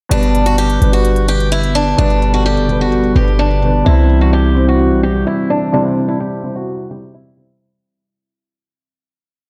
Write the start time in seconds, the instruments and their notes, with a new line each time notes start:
0.09 808-style bass G1, grand piano B2 G3 D4 B4, analog synth pad D3 G3 B3 B4, steel-string acoustic guitar D4, closed hi-hat
0.23 closed hi-hat
0.35 closed hi-hat
0.46 steel-string acoustic guitar F#4, closed hi-hat
0.58 steel-string acoustic guitar G4, closed hi-hat
0.70 closed hi-hat
0.79 808-style bass G1, grand piano B2 G3 D4 B4, closed hi-hat
0.93 steel-string acoustic guitar F#4
1.05 closed hi-hat
1.16 closed hi-hat
1.28 steel-string acoustic guitar G4, closed hi-hat
1.40 closed hi-hat
1.52 steel-string acoustic guitar E4, closed hi-hat
1.63 closed hi-hat
1.75 steel-string acoustic guitar D4, closed hi-hat
1.97 808-style bass G1, grand piano B2 G3 D4 B4, steel-string acoustic guitar D4, analog synth pad A4, closed hi-hat
2.10 closed hi-hat
2.22 closed hi-hat
2.34 steel-string acoustic guitar F#4, closed hi-hat
2.46 steel-string acoustic guitar G4, closed hi-hat
2.57 808-style bass F#1, closed hi-hat
2.68 grand piano B2 G3 D4 B4, closed hi-hat
2.81 steel-string acoustic guitar F#4
2.87 808-style bass G1
2.92 closed hi-hat
3.04 closed hi-hat
3.14 808-style bass G1, grand piano B2 G3 D4 B4, steel-string acoustic guitar G4, closed hi-hat
3.28 closed hi-hat
3.39 steel-string acoustic guitar D4, closed hi-hat
3.51 closed hi-hat
3.61 grand piano B2 G3 D4 B4, closed hi-hat
3.85 808-style bass C2, grand piano C3 G3 E4 C5, analog synth pad E3 G3 C4 E4, steel-string acoustic guitar E4, closed hi-hat
3.98 closed hi-hat
4.10 closed hi-hat
4.21 steel-string acoustic guitar F#4, closed hi-hat
4.33 steel-string acoustic guitar G4, closed hi-hat
4.45 closed hi-hat
4.55 grand piano G3 C4 E4 C5, closed hi-hat
4.68 steel-string acoustic guitar F#4
4.80 closed hi-hat
4.91 808-style bass B1, closed hi-hat
5.03 steel-string acoustic guitar G4, closed hi-hat
5.15 closed hi-hat
5.27 steel-string acoustic guitar E4, closed hi-hat
5.38 closed hi-hat
5.50 steel-string acoustic guitar D4, closed hi-hat
5.72 grand piano C3 G3 E4 C5, steel-string acoustic guitar D4, closed hi-hat
5.85 closed hi-hat
5.97 closed hi-hat
6.08 steel-string acoustic guitar E4, closed hi-hat
6.20 steel-string acoustic guitar G4, closed hi-hat
6.32 closed hi-hat
6.42 grand piano C3 G3 E4 C5, closed hi-hat
6.56 steel-string acoustic guitar F#4
6.89 grand piano C3 G3 E4 C5, steel-string acoustic guitar G4
7.14 steel-string acoustic guitar E4
7.36 grand piano C3 G3 E4 C5